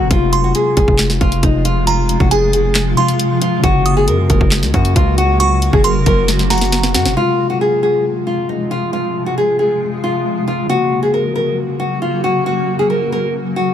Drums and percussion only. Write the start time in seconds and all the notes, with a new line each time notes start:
0.11 kick, closed hi-hat
0.33 closed hi-hat
0.55 closed hi-hat
0.77 kick, closed hi-hat
0.88 kick
0.98 snare, clap, closed hi-hat
1.10 snare
1.21 kick, closed hi-hat
1.32 closed hi-hat
1.43 kick, closed hi-hat
1.65 closed hi-hat
1.87 closed hi-hat
2.09 closed hi-hat
2.20 kick
2.31 closed hi-hat
2.53 closed hi-hat
2.75 snare, clap, closed hi-hat
2.97 closed hi-hat
3.08 closed hi-hat
3.19 closed hi-hat
3.42 closed hi-hat
3.64 kick, closed hi-hat
3.86 closed hi-hat
4.08 closed hi-hat
4.30 kick, closed hi-hat
4.41 kick
4.51 snare, clap, closed hi-hat
4.63 snare
4.74 kick, closed hi-hat
4.85 closed hi-hat
4.96 kick, closed hi-hat
5.18 closed hi-hat
5.40 closed hi-hat
5.62 closed hi-hat
5.73 kick
5.84 closed hi-hat
6.06 kick, closed hi-hat
6.28 snare, closed hi-hat
6.39 snare
6.50 snare, closed hi-hat
6.58 snare, closed hi-hat
6.65 closed hi-hat
6.72 snare, closed hi-hat
6.83 snare
6.94 snare, closed hi-hat
7.05 snare